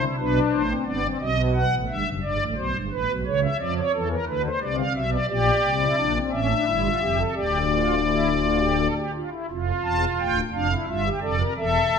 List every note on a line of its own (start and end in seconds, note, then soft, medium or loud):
0.01 0.15 E4 medium
0.18 0.39 B1 medium
0.18 0.39 B2 medium
0.18 0.62 D4 medium
0.18 0.39 B4 medium
0.51 0.73 A1 medium
0.51 0.73 A2 medium
0.51 0.73 C5 medium
0.70 0.84 C4 medium
0.85 1.07 G1 medium
0.85 1.07 G2 medium
0.85 1.01 B3 medium
0.85 1.07 D5 medium
1.03 1.18 C4 medium
1.20 1.64 B1 medium
1.20 1.64 B2 medium
1.20 1.41 D#5 medium
1.54 1.75 F#5 medium
1.71 1.86 A1 medium
1.71 1.86 A2 medium
1.88 2.03 G1 medium
1.88 2.03 G2 medium
1.88 2.09 E5 medium
2.06 2.20 F#1 medium
2.06 2.20 F#2 medium
2.23 2.37 G1 medium
2.23 2.37 G2 medium
2.23 2.44 D5 medium
2.39 2.54 A1 medium
2.39 2.54 A2 medium
2.56 2.71 B1 medium
2.56 2.71 B2 medium
2.56 2.77 C5 medium
2.74 2.88 G1 medium
2.74 2.89 G2 medium
2.91 3.06 A1 medium
2.91 3.06 A2 medium
2.91 3.12 B4 medium
3.09 3.24 B1 medium
3.09 3.23 B2 medium
3.26 3.47 C#2 medium
3.26 3.47 C#3 medium
3.26 3.40 C#5 medium
3.43 3.57 E5 medium
3.59 3.80 F2 medium
3.59 3.80 F3 medium
3.59 3.74 D5 medium
3.78 3.92 C#5 medium
3.94 4.15 E2 medium
3.94 4.15 E3 medium
3.94 4.08 A4 medium
4.10 4.25 A#4 medium
4.27 4.48 D2 medium
4.27 4.48 D3 medium
4.27 4.42 B4 medium
4.45 4.59 C5 medium
4.60 4.82 C2 medium
4.60 4.82 C3 medium
4.60 4.76 D5 medium
4.77 4.93 F5 medium
4.95 5.16 B1 medium
4.95 5.17 B2 medium
4.95 5.10 E5 medium
5.11 5.26 D5 medium
5.28 5.50 A#1 medium
5.28 5.50 A#2 medium
5.28 5.73 G4 medium
5.28 6.18 D5 medium
5.64 5.86 C2 medium
5.64 5.85 C3 medium
5.80 5.95 E4 medium
5.97 6.19 A#1 medium
5.97 6.19 A#2 medium
5.97 6.13 D4 medium
6.17 6.31 C4 medium
6.31 6.54 A1 medium
6.31 6.54 A2 medium
6.31 6.47 C#4 medium
6.31 7.23 E5 medium
6.49 6.65 D4 medium
6.65 6.88 G1 medium
6.65 6.88 G2 medium
6.65 6.82 E4 medium
6.83 6.99 F4 medium
7.01 7.23 F1 medium
7.01 7.23 F2 medium
7.01 7.17 G4 medium
7.18 7.34 A4 medium
7.35 8.88 D1 medium
7.35 8.88 D2 medium
7.35 7.58 G4 medium
7.35 8.88 D5 medium
7.72 7.94 F4 medium
8.06 8.29 E4 medium
8.42 8.58 F4 medium
8.60 8.76 G4 medium
8.79 8.94 A4 medium
8.96 9.11 G4 medium
9.14 9.29 F4 medium
9.31 9.46 E4 medium
9.49 9.71 F1 medium
9.49 9.71 F2 medium
9.49 10.38 F4 medium
9.83 10.05 E1 medium
9.83 10.05 E2 medium
9.83 10.05 A5 medium
10.20 10.41 D1 medium
10.20 10.41 D2 medium
10.20 10.40 G5 medium
10.53 10.74 F1 medium
10.53 10.74 F2 medium
10.53 10.67 D4 medium
10.53 10.74 F5 medium
10.72 10.85 E4 medium
10.88 11.09 G1 medium
10.88 11.09 G2 medium
10.88 11.02 F4 medium
10.88 11.09 E5 medium
11.05 11.19 G4 medium
11.21 11.43 F1 medium
11.21 11.43 F2 medium
11.21 11.36 A4 medium
11.21 11.42 D5 medium
11.39 11.53 A#4 medium
11.57 11.78 E1 medium
11.57 11.78 E2 medium
11.57 11.99 A4 medium
11.57 11.99 E5 medium
11.90 11.99 D1 medium
11.90 11.99 D2 medium